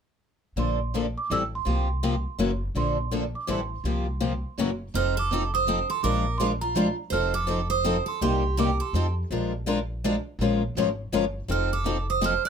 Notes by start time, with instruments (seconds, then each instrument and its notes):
0.56 upright bass A#1, steel-string acoustic guitar D3 F3 A#3 D4 A4, celesta C6
0.94 steel-string acoustic guitar D3 F3 A#3 D4 A4
1.18 celesta D6
1.30 upright bass A1, steel-string acoustic guitar E3 G3 C4 E4 A4, celesta E6
1.55 celesta C6
1.65 upright bass C2, steel-string acoustic guitar C3 F3 A#3 F4 G4
2.03 steel-string acoustic guitar C3 F3 A#3 F4 G4
2.38 upright bass F#1, steel-string acoustic guitar C#3 E3 F#3 A#3 C#4 E4 F#4 A#4
2.75 upright bass A#1, steel-string acoustic guitar D3 F3 A#3 D4 A4, celesta C6
3.11 steel-string acoustic guitar D3 F3 A#3 D4 A4
3.35 celesta D6
3.47 upright bass A1, steel-string acoustic guitar E3 G3 C4 E4 A4, celesta C6
3.84 upright bass C2, steel-string acoustic guitar C3 F3 A#3 F4 G4
4.20 steel-string acoustic guitar C3 F3 A#3 F4 G4
4.58 upright bass F#1, steel-string acoustic guitar C#3 E3 F#3 A#3 C#4 E4 F#4 A#4
4.94 upright bass F1, steel-string acoustic guitar F3 C4 D#4 A4 C5, celesta F6
5.17 steel-string acoustic guitar A4, celesta D6
5.33 steel-string acoustic guitar F3 C4 D#4 A4
5.54 steel-string acoustic guitar C5, celesta D#6
5.68 steel-string acoustic guitar F3 C4 D#4 A4
5.90 steel-string acoustic guitar A4, celesta C6
6.03 upright bass A#1, steel-string acoustic guitar F3 G#3 D4 F4 A#4, celesta D6
6.38 steel-string acoustic guitar F3 G#3 D4 F4 G#4 A#4, celesta C6
6.61 steel-string acoustic guitar F4, celesta A#5
6.76 steel-string acoustic guitar F3 G#3 D4 F4 A#4
7.10 upright bass F1, steel-string acoustic guitar F3 C4 D#4 A4 C5, celesta F6
7.34 steel-string acoustic guitar A4, celesta D6
7.47 steel-string acoustic guitar F3 C4 D#4 A4
7.70 steel-string acoustic guitar C5, celesta D#6
7.84 steel-string acoustic guitar F3 C4 D#4 A4
8.06 steel-string acoustic guitar A4, celesta C6
8.21 upright bass C2, steel-string acoustic guitar C3 G3 A#3 D#4 G4, celesta C6
8.57 steel-string acoustic guitar C3 G3 A#3 D#4 G4 A#4, celesta D6
8.80 steel-string acoustic guitar A4, celesta C6
8.93 upright bass F2, steel-string acoustic guitar F3 C4 D#4 A4
9.31 upright bass A#1, steel-string acoustic guitar F3 G#3 D4 F4 A#4
9.66 steel-string acoustic guitar F3 G#3 D4 F4 A#4
10.04 steel-string acoustic guitar F3 G#3 D4 F4 A#4
10.39 upright bass A#1, steel-string acoustic guitar F3 G#3 C#4 F4
10.43 steel-string acoustic guitar A#4
10.75 upright bass G#1, steel-string acoustic guitar F3 G#3 C#4 F4 A#4
11.12 upright bass G1, steel-string acoustic guitar F3 G#3 C#4 F4 A#4
11.48 upright bass F1, steel-string acoustic guitar F3 C4 D#4 A4 C5, celesta F6
11.73 steel-string acoustic guitar A4, celesta D6
11.86 steel-string acoustic guitar F3 C4 D#4 A4
12.10 steel-string acoustic guitar C5, celesta D#6
12.21 steel-string acoustic guitar F3 C4 D#4 A4 C5
12.26 celesta F6
12.45 steel-string acoustic guitar D5